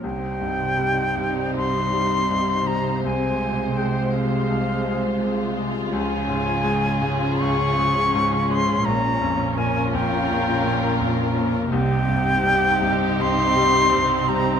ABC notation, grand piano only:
X:1
M:4/4
L:1/8
Q:1/4=83
K:Cphr
V:1 name="Grand piano" clef=bass
C,, G,, G, G,, C,, G, G,, G, | C,, C, A, C, C,, A, C, A, | D,, A,, A, A,, D,, A, A,, A, | B,,, F,, B, F,, B,,, B, F,, B, |
C,, G,, G, G,, C,, G, G,, G, |]